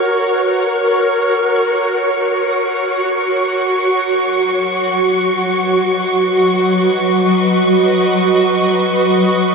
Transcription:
Already playing: F#4 A#4 C#5 C#6
0.37 B4
0.65 B4
0.69 A#4
4.06 F#3
5.07 B4
5.44 D#5
7.33 F#5

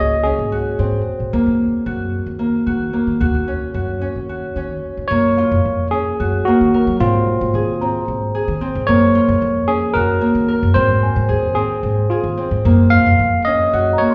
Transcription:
Already playing: A#3 C#4 F#4 D#5
0.00 C#2 G#4
0.23 C#4 G#4
0.39 G#1
0.52 F#4
0.79 G#2 C4
1.20 A#1
1.33 D#2 A#3
1.46 D#2
1.86 F#2 F#4
2.26 D#2
2.39 A#3
2.67 D#3 F#4
2.93 A#3
3.07 D#3
3.20 D#2 F#4
3.34 D#2
3.48 C#4
3.74 F#2 F#4
4.01 C#4
4.16 D#2
4.29 F#4
4.56 D#3 C#4
4.97 D#3
5.08 F#2 A#3 C#5
5.37 F4 F5
5.51 F#2
5.65 F2
5.91 C#4 G#4
6.20 F#2 F#4
6.45 A#3 F#4
6.61 D#3
6.74 A#4
6.87 F#3
7.00 G#2 C4 F4
7.41 G#2
7.54 D#2 G#4
7.81 C4 A#5
8.08 G#2
8.35 G#4
8.48 D#3
8.61 C4
8.75 G#2
8.87 F#2 A#3 C#5
9.15 F4
9.28 F#2
9.42 F2
9.68 C#4 G#4
9.94 F#2 F#4 A#4
10.21 A#3
10.35 D#3
10.48 A#4
10.63 F#2
10.74 G#2 C4 C5
11.03 G#5
11.16 G#2
11.29 D#2 G#4
11.55 C4 G#4
11.83 G#2
12.10 F4 G#4
12.24 D#3
12.37 C4
12.51 G#2
12.65 F#2 A#3
12.90 F4 F5
13.06 F#2
13.19 F2
13.45 C#4 D#5
13.73 F#2 F#4 F#5
13.93 A#5
13.98 A#3 C#5
14.10 C6

